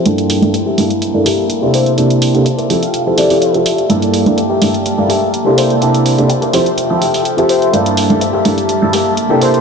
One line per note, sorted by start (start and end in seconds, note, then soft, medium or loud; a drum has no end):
0.00 0.11 C5 loud
0.00 1.71 G5 medium
0.00 1.71 A5 medium
0.05 0.39 G2 medium
0.05 0.39 A#3 medium
0.05 2.67 A#3 medium
0.05 0.39 D4 medium
0.05 0.40 E4 medium
0.05 2.67 E4 medium
0.05 0.40 A4 medium
0.05 closed hi-hat medium
0.18 closed hi-hat soft
0.29 muted clean electric guitar stroke soft
0.29 open hi-hat loud
0.41 0.51 G2 medium
0.41 0.51 A#3 medium
0.41 0.51 D4 medium
0.41 0.51 E4 medium
0.41 0.51 A4 medium
0.41 muted clean electric guitar stroke soft
0.41 closed hi-hat soft
0.53 muted clean electric guitar stroke loud
0.53 closed hi-hat medium
0.66 0.84 G4 medium
0.66 0.84 A4 medium
0.66 0.84 A#4 medium
0.66 0.84 E5 medium
0.77 0.87 G2 medium
0.77 0.87 A#3 medium
0.77 0.87 D4 medium
0.77 0.87 E4 medium
0.77 0.88 A4 medium
0.77 open hi-hat loud
0.90 closed hi-hat soft
1.01 muted clean electric guitar stroke soft
1.01 closed hi-hat medium
1.14 1.23 G2 medium
1.14 1.23 A#3 medium
1.14 1.23 D4 medium
1.14 1.23 E4 medium
1.14 1.23 A4 medium
1.25 1.44 G4 loud
1.25 1.44 A4 medium
1.25 1.44 A#4 loud
1.25 1.44 E5 loud
1.25 open hi-hat loud
1.50 closed hi-hat medium
1.62 1.95 C3 medium
1.62 1.95 A#3 medium
1.62 1.95 D4 medium
1.62 1.95 E4 medium
1.62 1.73 G4 medium
1.62 1.95 G4 medium
1.62 1.72 A4 medium
1.62 1.95 A4 medium
1.62 1.72 A#4 medium
1.62 1.72 C5 medium
1.73 2.12 A4 medium
1.73 2.12 A#4 medium
1.73 2.13 C5 medium
1.73 2.69 C5 medium
1.73 1.91 C5 medium
1.73 2.69 D5 medium
1.73 2.13 D5 medium
1.73 2.13 E5 loud
1.73 2.69 A5 medium
1.73 open hi-hat loud
1.86 closed hi-hat soft
1.97 2.31 C3 medium
1.97 2.31 A#3 medium
1.97 2.31 D4 medium
1.97 2.31 E4 medium
1.97 2.31 G4 medium
1.97 2.32 A5 medium
1.97 closed hi-hat medium
2.10 closed hi-hat soft
2.21 muted clean electric guitar stroke soft
2.21 open hi-hat loud
2.34 2.43 C3 medium
2.34 2.43 A#3 medium
2.34 2.43 D4 medium
2.34 2.43 E4 medium
2.34 2.43 G4 medium
2.34 2.43 A4 medium
2.34 muted clean electric guitar stroke soft
2.34 closed hi-hat soft
2.45 muted clean electric guitar stroke loud
2.45 closed hi-hat medium
2.58 2.68 A4 medium
2.58 2.69 A#4 medium
2.58 2.70 C5 medium
2.58 2.70 D5 medium
2.58 2.69 E5 medium
2.58 closed hi-hat soft
2.69 2.79 F3 medium
2.69 2.79 C4 medium
2.69 2.79 E4 medium
2.69 3.08 F4 medium
2.69 3.89 F4 medium
2.69 3.08 G4 medium
2.69 2.80 G4 medium
2.69 3.09 A4 medium
2.69 3.89 A4 medium
2.69 2.80 A4 medium
2.69 5.55 E5 medium
2.69 3.09 E5 loud
2.69 3.89 G5 medium
2.69 open hi-hat loud
2.83 2.90 F5 medium
2.83 closed hi-hat soft
2.94 3.02 F5 medium
2.94 closed hi-hat medium
3.06 3.15 F3 medium
3.06 3.15 C4 medium
3.06 3.15 E4 medium
3.06 3.15 G4 medium
3.06 3.15 A4 medium
3.16 3.28 F3 medium
3.16 3.28 C4 medium
3.16 3.28 E4 medium
3.16 3.35 F4 loud
3.16 3.36 G4 loud
3.16 3.29 G4 medium
3.16 3.36 A4 loud
3.16 3.29 A4 medium
3.16 3.54 D5 medium
3.16 3.36 E5 loud
3.16 open hi-hat loud
3.30 3.51 F3 medium
3.30 3.51 C4 medium
3.30 3.51 E4 medium
3.30 3.51 G4 medium
3.30 3.51 A4 medium
3.30 open hi-hat medium
3.41 3.54 F5 medium
3.41 closed hi-hat medium
3.53 3.63 F3 medium
3.53 3.63 C4 medium
3.53 3.63 E4 medium
3.53 3.83 F4 medium
3.53 3.84 G4 medium
3.53 3.63 G4 medium
3.53 3.84 A4 medium
3.53 3.63 A4 medium
3.53 3.64 E5 medium
3.53 closed hi-hat soft
3.65 3.88 E5 medium
3.65 open hi-hat loud
3.78 closed hi-hat soft
3.89 4.23 G2 medium
3.89 6.51 A#3 medium
3.89 4.23 A#3 medium
3.89 4.23 D4 medium
3.89 4.23 E4 medium
3.89 5.56 G4 medium
3.89 4.23 A4 medium
3.89 6.51 A5 medium
3.89 closed hi-hat medium
4.02 closed hi-hat soft
4.13 muted clean electric guitar stroke soft
4.13 open hi-hat loud
4.25 4.35 G2 medium
4.25 4.35 A#3 medium
4.25 4.35 D4 medium
4.25 4.35 E4 medium
4.25 4.35 A4 medium
4.25 muted clean electric guitar stroke soft
4.25 closed hi-hat soft
4.37 muted clean electric guitar stroke loud
4.37 closed hi-hat medium
4.49 4.68 G4 medium
4.49 4.68 A4 medium
4.49 4.68 A#4 medium
4.49 4.68 E5 medium
4.61 4.71 G2 medium
4.61 4.71 A#3 medium
4.61 4.71 D4 medium
4.61 4.71 E4 medium
4.61 4.71 A4 medium
4.61 open hi-hat loud
4.74 closed hi-hat soft
4.85 muted clean electric guitar stroke soft
4.85 closed hi-hat medium
4.98 5.07 G2 medium
4.98 5.07 A#3 medium
4.98 5.07 D4 medium
4.98 5.07 E4 medium
4.98 5.07 A4 medium
5.09 5.27 G4 loud
5.09 5.28 A4 loud
5.09 5.28 A#4 medium
5.09 5.28 E5 loud
5.09 open hi-hat loud
5.34 closed hi-hat medium
5.45 5.79 C3 medium
5.45 5.79 A#3 medium
5.45 5.79 D4 medium
5.45 5.79 E4 medium
5.45 5.56 G4 medium
5.45 5.79 G4 medium
5.45 5.56 A4 medium
5.45 5.79 A4 medium
5.45 5.56 A#4 medium
5.45 5.56 C5 loud
5.57 6.53 E4 medium
5.57 5.96 A4 loud
5.57 5.96 A#4 medium
5.57 6.53 C5 medium
5.57 5.97 C5 medium
5.57 5.75 C5 medium
5.57 6.53 D5 medium
5.57 5.97 D5 medium
5.57 5.97 E5 loud
5.57 open hi-hat loud
5.70 closed hi-hat soft
5.81 6.15 C3 medium
5.81 6.15 A#3 medium
5.81 6.15 D4 medium
5.81 6.15 E4 medium
5.81 6.15 G4 medium
5.81 6.15 A5 loud
5.81 closed hi-hat medium
5.94 closed hi-hat soft
6.05 muted clean electric guitar stroke soft
6.05 open hi-hat medium
6.18 6.27 C3 medium
6.18 6.27 A#3 medium
6.18 6.27 D4 medium
6.18 6.27 E4 medium
6.18 6.27 G4 medium
6.18 6.27 A4 medium
6.18 muted clean electric guitar stroke soft
6.18 closed hi-hat soft
6.28 muted clean electric guitar stroke loud
6.28 closed hi-hat medium
6.41 6.52 A4 medium
6.41 6.53 A#4 medium
6.41 6.54 C5 medium
6.41 6.54 D5 medium
6.41 6.53 E5 medium
6.41 closed hi-hat soft
6.53 6.63 F3 medium
6.53 7.72 F3 medium
6.53 6.63 C4 medium
6.53 6.63 E4 medium
6.53 6.92 F4 medium
6.53 6.92 G4 medium
6.53 6.63 G4 medium
6.53 7.72 A4 medium
6.53 6.92 A4 medium
6.53 6.63 A4 medium
6.53 6.71 C5 medium
6.53 9.39 E5 medium
6.53 6.93 E5 medium
6.53 7.72 G5 medium
6.53 open hi-hat medium
6.66 closed hi-hat soft
6.78 closed hi-hat medium
6.90 6.99 F3 medium
6.90 6.99 C4 medium
6.90 6.99 E4 medium
6.90 6.99 G4 medium
6.90 6.99 A4 medium
7.01 7.20 F4 loud
7.01 7.20 G4 loud
7.01 7.20 A4 loud
7.01 7.20 E5 loud
7.01 open hi-hat loud
7.14 open hi-hat medium
7.25 closed hi-hat medium
7.37 7.71 F3 medium
7.37 7.71 C4 medium
7.37 7.68 F4 medium
7.37 7.71 G4 medium
7.37 7.68 G4 medium
7.37 7.71 A4 medium
7.37 7.68 A4 medium
7.37 7.71 E5 medium
7.37 7.68 E5 medium
7.37 closed hi-hat soft
7.49 7.79 C5 medium
7.49 open hi-hat loud
7.62 closed hi-hat soft
7.73 8.07 G2 medium
7.73 8.07 A#3 medium
7.73 9.61 A#3 medium
7.73 8.07 D4 medium
7.73 8.07 E4 medium
7.73 9.40 G4 medium
7.73 8.07 A4 loud
7.73 9.61 A5 medium
7.73 closed hi-hat medium
7.86 closed hi-hat medium
7.97 muted clean electric guitar stroke soft
7.97 open hi-hat loud
8.09 8.19 G2 medium
8.09 8.19 A#3 medium
8.09 8.19 D4 medium
8.09 8.19 E4 medium
8.09 8.19 A4 medium
8.09 muted clean electric guitar stroke soft
8.09 closed hi-hat soft
8.20 muted clean electric guitar stroke loud
8.20 closed hi-hat medium
8.33 8.51 G4 medium
8.33 8.52 A4 medium
8.33 8.52 A#4 medium
8.33 8.52 E5 medium
8.45 8.55 G2 medium
8.45 8.55 A#3 medium
8.45 8.55 D4 medium
8.45 8.55 E4 medium
8.45 8.55 A4 medium
8.45 open hi-hat medium
8.58 closed hi-hat medium
8.69 muted clean electric guitar stroke soft
8.69 closed hi-hat medium
8.82 8.91 G2 medium
8.82 8.91 A#3 medium
8.82 8.91 D4 medium
8.82 8.91 E4 medium
8.82 8.91 A4 medium
8.93 9.12 G4 loud
8.93 9.12 A4 medium
8.93 9.12 A#4 loud
8.93 9.12 E5 loud
8.93 open hi-hat loud
9.17 closed hi-hat medium
9.30 9.61 C3 medium
9.30 9.61 A#3 medium
9.30 9.61 D4 medium
9.30 9.61 E4 medium
9.30 9.41 G4 medium
9.30 9.61 G4 medium
9.30 9.40 A4 medium
9.30 9.61 A4 medium
9.30 9.40 A#4 medium
9.30 9.42 G5 medium
9.41 9.61 E4 medium
9.41 9.61 A4 medium
9.41 9.61 A#4 medium
9.41 9.61 C5 medium
9.41 9.59 C5 medium
9.41 9.61 D5 medium
9.41 9.61 E5 loud
9.41 open hi-hat loud
9.54 closed hi-hat soft